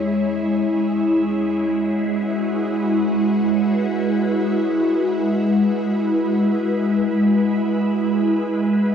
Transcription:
Already playing: E2 G#3 C#4 E4 C#5
0.94 F#4
1.70 B4
8.79 G#4

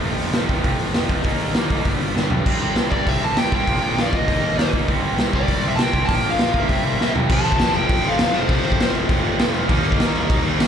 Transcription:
0.03 F1 F2 C3 F3 A3 C4, open hi-hat
0.18 F1, open hi-hat
0.33 F1 F2 C3 F3 A3 C4, snare, open hi-hat
0.49 F1 F2 C3 F3 A3 C4, kick, open hi-hat
0.64 F1 F2 C3 F3 A3 C4, kick, open hi-hat
0.79 F1, open hi-hat
0.94 F1 F2 C3 F3 A3 C4, snare, open hi-hat
1.09 F2 C3 F3 A3 C4, kick, open hi-hat
1.24 D#2 D#3 G3 A#3 D#4, kick, open hi-hat
1.40 D#2, open hi-hat
1.54 D#2 D#3 G3 A#3 D#4, snare, open hi-hat
1.70 A2 D#3 G3 A#3 D#4, kick, open hi-hat
1.85 G1 G2 D3 F3 G3 B3 D4, kick, open hi-hat
2.00 G1, open hi-hat
2.16 G1 G2 D3 F3 G3 B3 D4, snare
2.29 B1 F3 G3 B3 D4, floor tom
2.34 G2 D3
2.46 C2 C3 G3 C4 E4, kick, crash
2.62 C3 G3 C4 E4
2.76 C2 C3 G3 C4 E4, snare, open hi-hat
2.91 C2 C3 G3 C4 E4 D5, kick
3.07 C2 C3 G3 C4 E4 E5, kick, open hi-hat
3.23 C2 C3 G3 C4 E4 A5
3.37 C2 C3 G3 C4 E4 G5, snare, open hi-hat
3.52 C2 C3 G3 C4 E4 G5, kick
3.67 A#1 A#2 D3 F3 A#3 F4, kick, open hi-hat
3.82 A#1 A#2 D3 F3 A#3 F4
3.97 A#1 A#2 D3 F3 A#3 F4 F5, snare, open hi-hat
4.06 D5
4.12 D2 A#2 D3 F3 A#3 F4 D#5, kick
4.28 D#2 D#3 G3 A#3 D#4, kick, open hi-hat
4.42 D#2 D#3 G3 A#3 D#4
4.57 D#2 D#3 G3 A#3 D#4, snare, open hi-hat
4.72 D2 D#3 G3 A#3 D#4, kick
4.88 C2 C3 G3 C4 E4, kick, open hi-hat
5.03 C3 G3 C4 E4
5.17 C2 C3 G3 C4 E4, snare, open hi-hat
5.33 C2 C3 G3 C4 E4 D5, kick
5.47 C2 C3 G3 C4 E4, kick, open hi-hat
5.62 C2 C3 G3 C4 E4
5.69 E5
5.76 C2 C3 G3 C4 E4 A5, snare, open hi-hat
5.82 G5
5.92 C2 C3 G3 C4 E4, kick
6.06 A#1 A#2 D3 F3 A#3 F4 A5, kick, open hi-hat
6.14 G5
6.23 A#1 A#2 D3 F3 A#3 F4
6.30 F5
6.38 A#1 A#2 D3 F3 A#3 F4, snare, open hi-hat
6.53 G2 A#2 D3 F3 A#3 F4, kick
6.59 E5
6.69 C2 C3 G3 C4 E4, kick, open hi-hat
6.84 C2 C3 G3 C4 E4
6.99 C2 C3 G3 C4 E4, snare
7.14 C2 C3 G3 C4 E4, floor tom
7.29 F1 F2 C3 F3 A3 C4 A5, kick, crash
7.45 F1, crash
7.52 kick
7.59 F2, snare, crash
7.74 F1 G5, crash
7.89 F1 F2 C3 F3, kick, crash
8.03 F1 F2 C3 F3, crash
8.09 F5
8.18 F2 C3 F3, snare, crash
8.33 F1 F2 C3 F3 A3 C4 C5, crash
8.47 F1 F2 C3 F3 A3 C4, kick, crash
8.64 F1, crash
8.72 kick
8.79 F1, snare, crash
8.95 crash
9.09 F1 F2 C3 F3, kick, crash
9.22 F2 C3 F3, crash
9.37 F1 F2 C3 F3, snare, crash
9.53 F1 F2 C3 F3 A3 C4, crash
9.67 D#2 D#3 G3 A#3 D#4, kick, crash
9.85 D#2, crash
9.92 kick
9.99 D#3, snare, crash
10.15 D#2, crash
10.30 D#2 D#3 A#3 D#4, kick, crash
10.43 D#2 D#3 A#3 D#4, crash
10.57 D#3 A#3 D#4, snare, crash

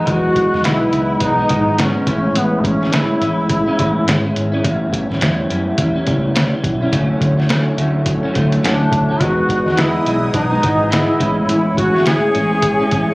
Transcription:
Already playing: D#4
0.04 E2 E3 F#3 G#3 B3 D#4, kick, closed hi-hat
0.09 F#4 D#5
0.36 kick, closed hi-hat
0.52 E2 G#3 B3 D#4, snare
0.64 B1 E3 G#3 B3 D#4 E4, snare, closed hi-hat
0.91 C#2 E3 G#3 B3 D#4, closed hi-hat
1.20 B1 E3 G#3 B3 D#4, kick, closed hi-hat
1.38 G#3 B3 D#4
1.49 G#1 E3 G#3 B3 D#4, kick, closed hi-hat
1.78 E3 G#3 B3 C#4 D#4, snare, closed hi-hat
1.95 G#3 B3 D#4
2.04 A1 A2 G#3 B3 C#4, kick, closed hi-hat
2.08 E4
2.35 A1 B3, closed hi-hat
2.60 D#4
2.64 A1 C#4, kick, closed hi-hat
2.81 G#3 C#4 E4, snare
2.92 A2 G#3 C#4 E4, snare, closed hi-hat
3.21 A1 A2 G#3 C#4 E4, closed hi-hat
3.49 kick, closed hi-hat
3.66 G#3 C#4 E4
3.78 A1 A2 G#3 C#4 E4, kick, closed hi-hat
4.07 G#1 A2 G#3 C#4 E4, snare, closed hi-hat
4.24 G#3 C#4 E4
4.36 G#1, closed hi-hat
4.52 G#3 C#4 E4
4.61 A1 A2 G3 B3 C#4, kick, closed hi-hat
4.65 E4
4.93 kick, closed hi-hat
5.09 A1 G3 C#4 E4, snare
5.21 E2 A2 G3 C#4 E4, snare, closed hi-hat
5.49 F#2 A2 G3 C#4 E4, closed hi-hat
5.77 E2 A2 G3 C#4 E4, kick, closed hi-hat
5.94 G3 C#4 E4
6.06 C#2 A2 G3 C#4 E4, kick, closed hi-hat
6.35 A2 G3 C#4 E4, snare, closed hi-hat
6.52 G3 C#4 E4
6.64 B1, kick, closed hi-hat
6.81 G3 C#4 E4
6.90 D2 D3 F#3 A3 C#4 E4 C#5, kick, closed hi-hat
6.95 F#4
7.21 D2, kick, closed hi-hat
7.37 F#3 A3 C#4, snare
7.49 D3 F#3 A3 C#4, snare, closed hi-hat
7.77 D2 D3 F#3 A3 C#4, closed hi-hat
8.06 kick, closed hi-hat
8.23 F#3 A3 C#4
8.34 D2 D3 F#3 A3 C#4, kick, closed hi-hat
8.52 closed hi-hat
8.63 D2 D3 F#3 A3 C#4 D4, snare, closed hi-hat
8.79 F#3 A3 C#4
8.92 D2, kick, closed hi-hat
9.09 F#3 A3 C#4
9.17 E2 E3 G#3 B3 F#4 G#4 D#5 D#6, kick, closed hi-hat
9.22 B3 D#4 F#4
9.49 kick, closed hi-hat
9.66 E2 G#3 B3 D#4, snare
9.77 E3 G#3 B3 D#4 E4, snare, closed hi-hat
10.05 B1 E3 G#3 B3 D#4, closed hi-hat
10.22 G#3 B3 D#4
10.33 B1 E3 G#3 B3 D#4, kick, closed hi-hat
10.50 G#3 B3 D#4
10.61 G#1 E3 G#3 B3 D#4, kick, closed hi-hat
10.90 E3 G#3 B3 D#4 E4, snare, closed hi-hat
11.07 G#3 B3 D#4
11.18 A1 A2 G#3 B3 C#4 E4 C#5 G#5 C#6, kick, closed hi-hat
11.23 G#4
11.48 A1 E4, closed hi-hat
11.77 A1 F#4, kick, closed hi-hat
11.94 G#3 C#4 E4, snare
12.06 A2 G#3 C#4 E4 G#4, snare, closed hi-hat
12.34 A1 A2 G#3 C#4 E4, closed hi-hat
12.51 G#3 C#4 E4
12.62 kick, closed hi-hat
12.80 G#3 C#4 E4
12.91 A1 A2 G#3 C#4 E4, kick, closed hi-hat

